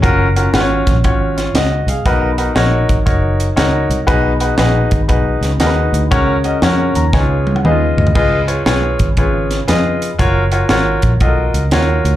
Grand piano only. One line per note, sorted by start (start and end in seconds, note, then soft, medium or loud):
0.02 0.26 C#4 medium
0.02 0.26 F4 medium
0.02 0.26 F#4 medium
0.02 0.26 A#4 loud
0.36 0.49 C#4 medium
0.36 0.49 F4 medium
0.36 0.49 F#4 medium
0.36 0.49 A#4 medium
0.54 0.94 C#4 medium
0.54 0.94 F4 medium
0.54 0.94 F#4 medium
0.54 0.62 B4 medium
0.61 0.97 C#5 medium
1.04 1.45 C#4 medium
1.04 1.36 F4 medium
1.04 1.38 F#4 medium
1.04 1.36 C#5 medium
1.38 1.54 F4 soft
1.38 1.54 C#5 medium
1.55 1.87 F#4 medium
1.55 1.87 D#5 medium
1.89 2.37 G#4 soft
1.89 2.37 F5 medium
2.06 2.86 B2 medium
2.06 2.29 D#4 medium
2.06 2.29 F#4 medium
2.06 2.29 A#4 medium
2.06 2.29 B4 loud
2.38 2.51 D#4 medium
2.38 2.51 F#4 medium
2.38 2.51 A#4 medium
2.38 2.51 B4 medium
2.55 2.96 D#4 medium
2.55 2.96 F#4 medium
2.55 2.96 A#4 medium
2.55 2.97 C#5 medium
3.06 3.47 D#4 medium
3.06 3.47 F#4 medium
3.06 3.47 A#4 medium
3.06 3.47 C#5 medium
3.56 3.97 D#4 medium
3.56 3.98 F#4 medium
3.56 3.97 A#4 medium
3.56 3.98 C#5 medium
4.07 4.88 B2 medium
4.07 4.31 D#4 loud
4.07 4.31 F#4 medium
4.07 4.31 G#4 medium
4.07 4.31 B4 loud
4.40 4.53 D#4 medium
4.40 4.54 F#4 medium
4.40 4.54 G#4 medium
4.40 4.54 B4 medium
4.58 4.99 D#4 medium
4.58 4.99 F#4 medium
4.58 4.99 G#4 medium
4.58 4.99 B4 loud
5.08 5.50 D#4 medium
5.08 5.50 F#4 medium
5.08 5.50 G#4 medium
5.08 5.50 B4 medium
5.60 6.01 D#4 medium
5.60 6.01 F#4 medium
5.60 6.01 G#4 medium
5.60 5.69 A#4 medium
5.66 6.04 B4 medium
6.11 6.92 C#3 medium
6.11 6.35 C#4 medium
6.11 6.35 F#4 medium
6.11 6.35 A#4 medium
6.11 6.35 C#5 loud
6.44 6.57 C#4 medium
6.44 6.57 F#4 medium
6.44 6.57 A#4 medium
6.44 6.58 D#5 medium
6.62 7.03 C#4 medium
6.62 7.03 F#4 medium
6.62 7.03 A#4 medium
6.62 7.03 C#5 medium
6.96 7.13 A#5 medium
7.13 7.94 C#3 medium
7.13 7.21 D#4 medium
7.13 7.54 G#4 medium
7.13 7.54 B4 medium
7.13 7.54 C#5 medium
7.13 7.53 G#5 medium
7.20 7.57 F4 medium
7.56 7.64 F#5 medium
7.65 7.73 D#4 medium
7.65 8.05 G#4 medium
7.65 8.05 B4 medium
7.65 7.96 D#5 medium
7.65 7.96 F5 medium
7.71 8.08 F4 medium
7.98 8.14 D#5 medium
8.15 8.39 F4 loud
8.15 8.39 G#4 medium
8.15 8.39 B4 medium
8.15 8.39 D#5 loud
8.47 8.60 F4 medium
8.47 8.61 G#4 medium
8.47 8.61 B4 medium
8.47 8.61 C#5 medium
8.66 9.07 F4 medium
8.66 9.07 G#4 medium
8.66 9.07 B4 medium
8.66 9.07 C#5 medium
9.18 9.98 C#3 medium
9.18 9.58 F4 medium
9.18 9.58 G#4 medium
9.18 9.58 B4 medium
9.18 9.58 C#5 medium
9.68 10.08 F4 medium
9.68 10.08 G#4 medium
9.68 10.09 B4 medium
9.68 10.09 D#5 medium
10.19 10.42 F4 medium
10.19 10.42 F#4 medium
10.19 10.42 A#4 medium
10.19 10.43 C#5 loud
10.52 10.65 F4 medium
10.52 10.65 F#4 medium
10.52 10.65 A#4 medium
10.52 10.65 C#5 medium
10.70 11.10 F4 medium
10.70 11.10 F#4 medium
10.70 11.10 A#4 medium
10.70 11.10 C#5 medium
11.21 11.61 F4 medium
11.21 11.61 F#4 medium
11.21 11.29 A4 medium
11.21 11.62 D#5 medium
11.27 11.64 A#4 medium
11.72 12.12 F4 medium
11.72 12.12 F#4 medium
11.72 12.13 A#4 medium
11.72 12.13 C#5 medium